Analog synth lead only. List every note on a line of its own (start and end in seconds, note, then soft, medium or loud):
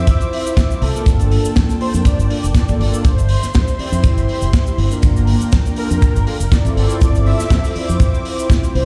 0.00 0.83 E5 loud
0.82 1.80 A4 loud
1.81 1.92 C5 loud
2.06 2.52 D5 loud
2.55 3.06 D5 loud
3.05 3.54 C5 loud
3.54 4.49 C5 medium
5.78 6.54 A#4 loud
6.52 7.01 D5 loud
7.02 7.25 D5 loud
7.27 7.97 E5 loud
8.75 8.85 C5 loud